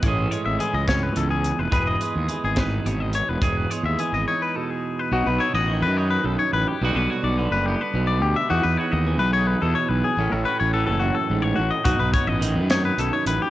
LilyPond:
<<
  \new Staff \with { instrumentName = "Clean electric guitar" } { \time 6/8 \key e \major \tempo 4. = 71 cis''16 a'16 cis''16 e''16 gis'16 dis''16 cis''16 b'16 a'16 gis'8 b'16 | b'16 dis''16 b'16 gis'8 gis'16 b'8 cis''16 dis''16 cis''16 b'16 | cis''16 b'16 cis''16 e''16 gis'16 dis''16 cis''16 b'16 a'16 gis'8 b'16 | fis'16 b'16 cis''16 dis''8 b'16 cis''16 b'16 a'16 cis''16 b'16 g'16~ |
g'16 b'16 cis''16 d''16 b'16 b'16 g'16 b'8 d''16 g'16 e''16 | fis'16 b'16 cis''16 dis''8 b'16 cis''16 b'16 a'16 cis''16 b'16 gis'16~ | gis'16 a'16 b'16 cis''16 a'16 a'16 fis'16 a'8 cis''16 fis'16 dis''16 | fis'16 b'16 cis''16 dis''8 b'16 cis''16 b'16 a'16 cis''16 b'16 g'16 | }
  \new Staff \with { instrumentName = "Clean electric guitar" } { \clef bass \time 6/8 \key e \major << { <e gis cis' gis'>8 gis4 cis'4. | gis'8 gis4 dis'4. | gis'8 gis4 dis'4. | dis'8 e'16 fis'8. dis'4. |
<d g b fis'>8 fis'4 b4. | dis'8 fis'4 dis'4. | cis'8 fis'2~ fis'8 | dis'8 fis'4 dis'4. | } \\ { a,4 e4 e,4 | e,4 e4 b,4 | e,4 e4 b,4 | b,4 dis4 fis,4 |
b,4 d4 b,4 | e,4 e4 b,4 | a,4 e8 fis,8 gis,8 a,8 | b,4 dis4 fis,4 | } >> }
  \new Staff \with { instrumentName = "Fingered electric bass" } { \clef bass \time 6/8 \key e \major a,,8 r16 gis,,16 r16 cis,8. cis,8. f,,16 | e,,8 r16 dis,16 r16 gis,,8. gis,,8. e,,16 | e,,8 r16 dis,16 r16 gis,,16 r4. | b,,16 b,,16 r16 a,,8 fis,8. b,,16 r16 a,,16 r16 |
b,,16 b,,16 r16 b,,8 fis,,8 r16 b,,8 d,16 r16 | e,16 e,16 r16 dis,8 b,,8. e,16 r16 b,,16 r16 | a,,16 a,,16 r16 a,,8 fis,,8 r16 a,,8 a,,16 r16 | b,,16 b,,16 r16 a,,8 fis,8. b,,16 r16 a,,16 r16 | }
  \new DrumStaff \with { instrumentName = "Drums" } \drummode { \time 6/8 <hh bd>8 hh8 hh8 <hh bd sn>8 hh8 hh8 | <hh bd>8 hh8 hh8 <hh bd sn>8 hh8 hh8 | <hh bd>8 hh8 hh8 r4. | r4. r4. |
r4. r4. | r4. r4. | r4. r4. | <hh bd>8 <hh bd>8 hh8 <hh sn>8 hh8 hh8 | }
>>